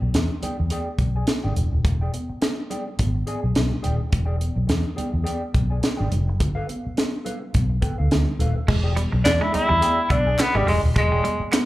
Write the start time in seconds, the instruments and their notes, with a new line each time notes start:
0.02 fingered electric bass B1, muted clean electric guitar stroke
0.13 fingered electric bass E2, muted clean electric guitar stroke, snare, closed hi-hat, muted conga, high conga
0.42 clean electric guitar G#4 D5 G5, muted fingered electric bass stroke, closed hi-hat, muted conga, high conga, low conga
0.60 fingered electric bass E2
0.70 clean electric guitar G#4 D5 G5, closed hi-hat, high conga
0.98 fingered electric bass B1, muted clean electric guitar stroke, kick, closed hi-hat, high conga
1.16 clean electric guitar G#4 D5 G#5
1.27 muted clean electric guitar stroke, snare, closed hi-hat, muted conga, high conga
1.44 fingered electric bass G#1, clean electric guitar G#4 D5 G5, low conga
1.55 fingered electric bass E1, muted clean electric guitar stroke, closed hi-hat, muted conga, low conga
1.71 fingered electric bass D#1, muted clean electric guitar stroke
1.85 fingered electric bass E1, muted clean electric guitar stroke, kick, closed hi-hat, muted conga
2.01 clean electric guitar G#4 D5 G5
2.14 muted clean electric guitar stroke, closed hi-hat, high conga
2.29 muted clean electric guitar stroke, muted fingered electric bass stroke
2.41 muted clean electric guitar stroke, snare, closed hi-hat, muted conga, high conga
2.70 clean electric guitar G#4 D5 G5, closed hi-hat, muted conga, high conga, low conga
2.87 muted clean electric guitar stroke
2.99 fingered electric bass G#1, muted clean electric guitar stroke, kick, closed hi-hat, muted conga, high conga
3.15 muted clean electric guitar stroke
3.27 clean electric guitar G#4 D5 G#5, closed hi-hat, high conga
3.43 fingered electric bass B1, muted clean electric guitar stroke
3.55 fingered electric bass B1, snare, closed hi-hat, muted conga, high conga
3.71 muted clean electric guitar stroke, low conga
3.82 fingered electric bass D#1, clean electric guitar G#4 D5 G5, closed hi-hat, muted conga, low conga
3.97 muted clean electric guitar stroke
4.10 fingered electric bass E1, muted clean electric guitar stroke, kick, closed hi-hat, muted conga
4.26 clean electric guitar G#4 D5 G5
4.38 muted clean electric guitar stroke, closed hi-hat, high conga
4.55 fingered electric bass B1, muted clean electric guitar stroke
4.67 fingered electric bass E2, muted clean electric guitar stroke, snare, closed hi-hat, muted conga, high conga
4.96 clean electric guitar G#4 D5 G5, muted fingered electric bass stroke, closed hi-hat, muted conga, high conga, low conga
5.12 fingered electric bass E2, muted clean electric guitar stroke
5.24 clean electric guitar G#4 D5 G5, closed hi-hat, muted conga, high conga
5.54 fingered electric bass B1, muted clean electric guitar stroke, kick, closed hi-hat, muted conga, high conga
5.70 clean electric guitar G#4 D5 G#5
5.82 muted clean electric guitar stroke, snare, closed hi-hat, high conga
5.97 fingered electric bass G#1, clean electric guitar G#4 D5 G5, low conga
6.10 fingered electric bass F1, muted clean electric guitar stroke, closed hi-hat, low conga
6.27 fingered electric bass F#1, muted clean electric guitar stroke
6.40 fingered electric bass G1, muted clean electric guitar stroke, kick, closed hi-hat, muted conga
6.55 clean electric guitar A4 B4 F5
6.68 muted clean electric guitar stroke, closed hi-hat, muted conga, high conga
6.84 muted clean electric guitar stroke, muted fingered electric bass stroke
6.97 muted clean electric guitar stroke, snare, closed hi-hat, high conga
7.25 clean electric guitar A4 B4 F5, closed hi-hat, high conga, low conga
7.41 muted clean electric guitar stroke
7.54 fingered electric bass B1, muted clean electric guitar stroke, kick, closed hi-hat, muted conga, high conga
7.70 muted clean electric guitar stroke
7.81 clean electric guitar A4 B4 G5, kick, closed hi-hat, high conga
7.98 fingered electric bass D2, clean electric guitar A4 B4 F5
8.11 fingered electric bass D2, snare, closed hi-hat, muted conga, high conga
8.27 muted clean electric guitar stroke, low conga
8.39 fingered electric bass D#1, clean electric guitar A4 B4 F5, closed hi-hat, low conga
8.56 muted clean electric guitar stroke
8.68 fingered electric bass E1, clean electric guitar G#3, muted clean electric guitar stroke, kick, crash, muted conga
8.83 clean electric guitar G#4 D5 G5
8.95 clean electric guitar G3, muted clean electric guitar stroke, closed hi-hat, high conga
9.12 fingered electric bass B1, muted clean electric guitar stroke
9.23 fingered electric bass E2, tenor saxophone D4, muted clean electric guitar stroke, snare, clap, closed hi-hat, high conga
9.41 clean electric guitar G#3, tenor saxophone E4
9.52 tenor saxophone E4, clean electric guitar G#4 D5 G5, muted clean electric guitar stroke, muted fingered electric bass stroke, closed hi-hat, high conga, low conga
9.69 fingered electric bass E2, clean electric guitar G3
9.81 clean electric guitar G#4 D5 G5, closed hi-hat, muted conga, high conga
10.10 fingered electric bass B1, clean electric guitar B3, tenor saxophone D4, muted clean electric guitar stroke, kick, closed hi-hat
10.26 clean electric guitar G#4 D5 G#5
10.39 tenor saxophone B3, muted clean electric guitar stroke, snare, clap, closed hi-hat, high conga
10.55 fingered electric bass G#1, tenor saxophone G3, clean electric guitar G#3 G#4 D5 G5, low conga
10.66 fingered electric bass E1, clean electric guitar G3, tenor saxophone G#3, muted clean electric guitar stroke, open hi-hat, low conga
10.83 fingered electric bass D#1, muted clean electric guitar stroke
10.96 fingered electric bass E1, clean electric guitar G#3, tenor saxophone G#3, muted clean electric guitar stroke, kick, closed hi-hat, muted conga
11.11 clean electric guitar G#4 D5 G5, muted clean electric guitar stroke
11.24 clean electric guitar G3, muted clean electric guitar stroke, closed hi-hat, high conga
11.39 muted clean electric guitar stroke, muted fingered electric bass stroke
11.52 clean electric guitar B3, muted clean electric guitar stroke, snare, clap, closed hi-hat, muted conga, high conga